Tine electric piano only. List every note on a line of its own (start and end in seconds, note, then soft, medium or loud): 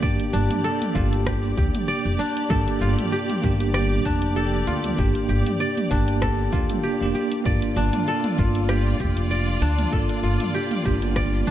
0.00 0.93 A#3 loud
0.00 0.03 D4 medium
0.00 0.92 D4 medium
0.00 0.05 G4 loud
0.05 0.93 G4 loud
0.93 2.46 A#3 loud
0.93 2.47 D4 medium
0.97 2.48 G4 loud
2.49 3.39 A#3 loud
2.49 3.40 D4 medium
2.53 3.41 G4 loud
3.41 4.94 A#3 loud
3.41 4.95 D4 medium
3.46 4.96 G4 loud
4.96 5.87 A#3 loud
4.96 5.88 D4 medium
5.00 5.89 G4 loud
5.90 6.50 A#3 loud
5.90 6.50 D4 medium
5.90 6.50 G4 loud
6.52 6.96 A#3 medium
6.52 6.97 D4 medium
6.52 6.98 G4 medium
7.01 7.42 A#3 medium
7.01 7.43 D4 medium
7.01 7.43 G4 medium
7.44 8.34 A#3 medium
7.44 8.35 D4 medium
7.48 8.36 F4 loud
8.37 9.89 A#3 loud
8.37 9.90 D4 medium
8.37 9.91 F4 loud
9.91 10.81 A#3 loud
9.91 10.82 D4 medium
9.95 10.83 F4 loud
10.83 11.51 A#3 loud
10.83 11.51 D4 loud
10.87 11.51 F4 loud